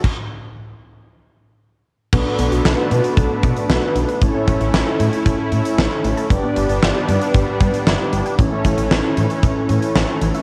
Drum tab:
CC |x---------------|x---------------|----------------|----------------|
HH |----------------|--xx--xxx-xx--xx|x-xx--xxx-xx--xx|x-xx--xxx-xx--xx|
SD |----------------|----o-------o---|----o-------o---|----o-------o---|
BD |o---------------|o-------o-o-----|o-o-----o-------|o-------o-o-----|

CC |----------------|
HH |x-xx--xxx-xx--xx|
SD |----o-------o---|
BD |o-o-----o-------|